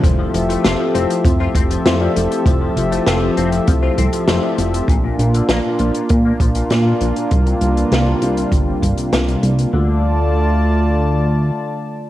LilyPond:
<<
  \new Staff \with { instrumentName = "FM electric piano" } { \time 4/4 \key f \major \tempo 4 = 99 <a c' e' f' c''>8. <a c' e' f' c''>16 r8 <a c' e' f' c''>8. <a c' e' f' c''>16 r8 <a c' e' f' c''>16 <a c' e' f' d''>16 <a c' e' f' a'>8 | <a c' e' f' c''>8. <a c' e' f' c''>16 r8 <a c' e' f' c''>8. <a c' e' f' c''>16 r8 <a c' e' f' c''>16 <a c' e' f' d''>16 <a c' e' f' a'>8 | r1 | r1 |
r1 | }
  \new Staff \with { instrumentName = "Analog synth pad" } { \time 4/4 \key f \major << { <g' a' e''>1~ | <g' a' e''>1 | <bes d' f'>1~ | <bes d' f'>1 |
<d a f' d'' a''>1 | } \\ { <f c'>1~ | <f c'>1 | r1 | <c g>1 |
r1 | } >> }
  \new Staff \with { instrumentName = "Clean electric guitar" } { \clef bass \time 4/4 \key f \major f16 f16 f16 a16 f'16 f16 c'16 f16 f16 f'16 c'16 f16 f16 f16 f16 f16 | f16 f16 f16 a16 f'16 f16 c'16 f16 f16 f'16 c'16 f16 f16 f16 f16 f16 | bes,16 bes,16 bes,16 d16 bes16 bes,16 f16 bes,16 bes,16 bes16 f16 bes,16 bes,16 bes,16 bes,16 bes,16 | c16 c16 c16 e16 c'16 c16 g16 c16 c16 c'16 g16 c16 c16 c16 c16 c16 |
d8 r2. r8 | }
  \new Staff \with { instrumentName = "Analog synth bass" } { \clef bass \time 4/4 \key f \major f,,8 f,,8 f,,8 f,,8 f,8 f,,8 f,8 f,,8 | f,,8 f,,8 f,,8 f,,8 c,8 c,8 f,,8 f,,8 | bes,,8 bes,,8 bes,,8 bes,,8 bes,8 bes,,8 bes,8 bes,,8 | c,8 c,8 c,8 c,8 g,,8 g,,8 c,8 c,8 |
d,2. r4 | }
  \new DrumStaff \with { instrumentName = "Drums" } \drummode { \time 4/4 <hh bd>8 hh16 hh16 <hh sn>8 hh16 hh16 <hh bd>8 <hh bd>16 hh16 <hh sn>8 hh16 hh16 | <hh bd>8 hh16 hh16 <hh sn>8 hh16 hh16 <hh bd>8 <hh bd>16 hh16 <hh sn>8 hh16 hh16 | <hh bd>8 hh16 hh16 <hh sn>8 hh16 hh16 <hh bd>8 <hh bd>16 hh16 <hh sn>8 hh16 hh16 | <hh bd>16 hh16 hh16 hh16 <hh sn>8 hh16 hh16 <hh bd>8 <hh bd>16 hh16 <hh sn>16 hh16 hh16 hh16 |
r4 r4 r4 r4 | }
>>